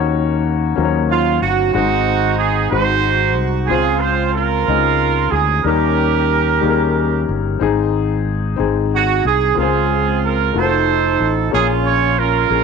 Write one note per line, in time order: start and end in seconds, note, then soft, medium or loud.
0.00 0.73 D#2 medium
0.00 0.73 D#3 medium
0.00 0.47 A#3 medium
0.00 0.47 C#4 medium
0.00 0.48 D#4 medium
0.00 0.48 F#4 medium
0.00 0.52 C#5 medium
0.76 1.38 D#2 medium
0.76 1.46 F#3 medium
0.76 1.45 A#3 medium
0.76 1.45 C#4 medium
0.76 1.46 D#4 medium
0.76 0.84 C5 soft
0.84 1.49 C#5 medium
1.11 1.41 F4 medium
1.42 1.72 G1 medium
1.42 1.72 F#4 medium
1.73 2.68 G#1 medium
1.73 2.68 G#2 soft
1.73 2.43 G#3 medium
1.73 2.43 C4 medium
1.73 2.68 C4 medium
1.73 2.43 D#4 medium
1.73 2.69 D#4 medium
1.73 2.35 F#4 medium
1.73 2.43 F#4 medium
1.73 2.44 C5 medium
2.39 2.70 G#4 medium
2.70 3.38 G#1 medium
2.70 3.40 G#3 soft
2.70 3.40 C4 soft
2.70 3.41 D#4 soft
2.70 3.67 D#4 medium
2.70 3.41 F#4 soft
2.70 3.67 F#4 medium
2.70 3.41 C5 medium
3.38 3.67 C2 medium
3.67 4.64 C#2 medium
3.67 4.64 C#3 soft
3.67 4.38 G#3 medium
3.67 4.38 C4 medium
3.67 4.35 F4 medium
3.67 4.39 F4 medium
3.67 3.99 G#4 medium
3.71 4.64 C4 medium
3.71 4.39 C5 medium
4.00 4.34 C5 medium
4.33 5.29 F4 medium
4.33 5.28 A#4 medium
4.67 5.29 C#2 medium
4.67 5.36 G#3 medium
4.67 5.36 C4 soft
4.67 5.36 C#4 soft
4.67 4.75 D#4 soft
4.67 5.37 D#5 medium
4.76 5.40 F4 soft
5.31 5.62 D2 medium
5.31 5.64 G#4 medium
5.63 6.59 D#2 medium
5.63 6.59 D#3 soft
5.63 6.33 G3 medium
5.63 6.34 A#3 medium
5.63 6.34 C#4 medium
5.63 7.25 C#4 medium
5.63 6.34 D#4 medium
5.63 7.25 G4 medium
5.63 7.23 A#4 medium
5.63 6.35 A#4 medium
6.61 7.24 D#2 medium
6.61 7.31 G3 medium
6.61 7.31 A#3 medium
6.61 7.32 C#4 medium
6.61 7.32 D#4 medium
6.61 6.70 G#4 medium
6.70 7.35 A#4 medium
7.29 7.59 G1 medium
7.60 8.55 G#1 medium
7.60 8.55 G#2 medium
7.60 8.29 C4 medium
7.60 8.30 D#4 medium
7.60 8.30 G#4 medium
8.56 9.21 G#1 medium
8.56 9.26 C4 medium
8.56 9.27 D#4 medium
8.56 9.28 G#4 medium
8.95 9.24 F#4 medium
9.25 9.55 C2 medium
9.25 9.55 G#4 medium
9.54 10.51 C#2 medium
9.54 10.50 C#3 medium
9.54 10.24 G#3 medium
9.54 10.25 C4 medium
9.54 10.51 C4 medium
9.54 10.25 F4 medium
9.54 10.51 F4 medium
9.54 9.64 A#4 medium
9.60 10.20 G#4 medium
9.60 10.29 C5 medium
10.26 10.57 A#4 medium
10.53 11.16 F1 medium
10.53 11.23 A3 soft
10.53 11.23 D#4 soft
10.53 11.24 F4 soft
10.53 11.24 F#4 soft
10.53 10.62 A#4 soft
10.57 11.50 D#4 medium
10.57 11.50 A4 medium
10.57 11.30 C5 medium
10.63 11.28 C5 medium
11.20 11.50 A1 medium
11.51 12.47 A#1 medium
11.51 12.46 A#2 soft
11.51 12.21 A#3 medium
11.51 12.21 C#4 medium
11.51 12.18 C#4 medium
11.51 12.21 F4 medium
11.51 12.18 F4 medium
11.51 12.21 G#4 medium
11.51 12.22 C#5 medium
11.55 11.69 G#4 medium
11.86 12.16 C#5 medium
12.19 12.64 C#4 medium
12.19 12.64 F4 medium
12.19 12.64 A#4 medium
12.49 12.64 A#1 medium
12.49 12.64 A#3 medium
12.49 12.64 C#4 soft
12.49 12.64 F4 soft
12.49 12.64 G#4 soft
12.49 12.64 A#4 medium